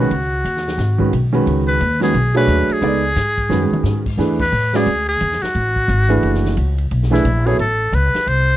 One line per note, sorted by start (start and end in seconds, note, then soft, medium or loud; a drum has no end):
0.00 1.31 F#4 medium
0.10 0.43 C#2 medium
0.10 ride medium
0.44 0.77 D#2 medium
0.44 hi-hat pedal medium
0.44 ride medium
0.57 snare soft
0.68 snare soft
0.78 1.11 G#1 medium
0.78 snare soft
0.78 ride medium
0.98 1.10 D#3 medium
0.98 1.11 G#3 medium
0.98 1.11 C#4 medium
0.98 1.11 F#4 medium
0.98 1.11 B4 medium
0.98 kick medium
1.13 1.46 B1 medium
1.13 hi-hat pedal medium
1.13 ride medium
1.33 1.77 D#3 medium
1.33 1.77 G#3 medium
1.33 1.77 C#4 medium
1.33 1.78 F#4 medium
1.33 1.78 B4 medium
1.33 ride soft
1.46 1.79 C#2 medium
1.46 ride medium
1.68 1.99 B4 loud
1.80 2.13 D#2 medium
1.80 hi-hat pedal medium
1.80 ride medium
2.00 2.12 D#3 medium
2.00 2.13 G#3 medium
2.00 2.13 C#4 medium
2.00 2.13 F#4 medium
2.00 2.34 G#4 loud
2.00 2.13 B4 medium
2.00 snare soft
2.00 ride soft
2.14 2.47 B1 medium
2.14 ride medium
2.35 2.79 F#3 medium
2.35 2.80 A3 medium
2.35 2.80 D4 medium
2.35 2.80 G#4 medium
2.35 2.74 B4 loud
2.35 2.80 C#5 medium
2.47 2.68 D#2 medium
2.47 hi-hat pedal medium
2.47 ride medium
2.69 4.07 G#4 loud
2.69 muted upright bass stroke soft
2.69 ride soft
2.81 3.15 C#2 medium
2.81 3.01 G#3 medium
2.81 3.01 B3 medium
2.81 3.02 D#4 medium
2.81 3.02 A4 medium
2.81 3.02 D5 medium
2.81 ride medium
3.16 3.49 G#2 medium
3.16 snare soft
3.16 hi-hat pedal medium
3.16 ride medium
3.38 kick medium
3.38 ride soft
3.49 3.70 F#2 medium
3.49 4.01 D#3 medium
3.49 4.01 G#3 medium
3.49 4.01 C#4 medium
3.49 4.02 F#4 medium
3.49 4.02 B4 medium
3.49 snare soft
3.62 high tom medium
3.71 muted upright bass stroke soft
3.71 mid tom medium
3.83 4.17 G#2 medium
3.83 snare medium
3.83 hi-hat pedal soft
4.06 kick medium
4.06 crash medium
4.17 4.51 E2 medium
4.17 4.37 E3 medium
4.17 4.37 A3 medium
4.17 4.38 D4 medium
4.17 4.38 G#4 medium
4.17 4.38 B4 medium
4.17 snare soft
4.39 4.78 B4 loud
4.39 kick medium
4.39 crash medium
4.52 4.85 A2 medium
4.52 hi-hat pedal medium
4.73 4.85 G#3 medium
4.73 4.85 C#4 medium
4.73 4.86 F#4 medium
4.73 5.08 G#4 loud
4.73 4.86 B4 medium
4.73 4.86 D5 medium
4.73 snare soft
4.86 5.19 D2 medium
4.86 ride medium
5.09 5.44 G#4 loud
5.20 5.40 E2 medium
5.20 hi-hat pedal medium
5.20 ride medium
5.32 snare soft
5.42 6.78 F#4 loud
5.42 muted upright bass stroke soft
5.42 snare soft
5.42 ride soft
5.55 5.88 A1 medium
5.55 ride medium
5.76 kick medium
5.88 6.21 G#1 medium
5.88 hi-hat pedal medium
5.88 ride medium
6.09 6.53 E3 medium
6.09 6.54 A3 medium
6.09 6.54 D4 medium
6.09 6.54 G#4 medium
6.09 6.54 B4 medium
6.09 ride medium
6.23 6.56 F#1 medium
6.23 ride medium
6.34 snare soft
6.45 snare soft
6.57 6.90 C#2 medium
6.57 hi-hat pedal medium
6.57 ride medium
6.78 ride soft
6.91 7.24 B1 medium
6.91 ride medium
7.03 snare soft
7.10 7.23 E3 medium
7.10 7.23 A3 medium
7.10 7.23 D4 medium
7.10 7.48 E4 medium
7.10 7.23 G#4 medium
7.10 7.24 B4 medium
7.10 snare soft
7.24 7.57 A#1 medium
7.24 hi-hat pedal medium
7.24 ride medium
7.46 7.57 F#3 medium
7.46 7.57 B3 medium
7.46 7.58 E4 medium
7.46 7.59 G#4 medium
7.46 7.58 A4 medium
7.46 7.58 C#5 medium
7.46 ride medium
7.59 7.92 A1 medium
7.59 7.96 A4 loud
7.59 ride medium
7.92 8.12 C#2 medium
7.92 8.29 B4 loud
7.92 hi-hat pedal medium
7.92 ride medium
8.14 muted upright bass stroke soft
8.14 snare soft
8.14 ride soft
8.27 8.57 C2 medium
8.27 8.57 C5 loud
8.27 ride medium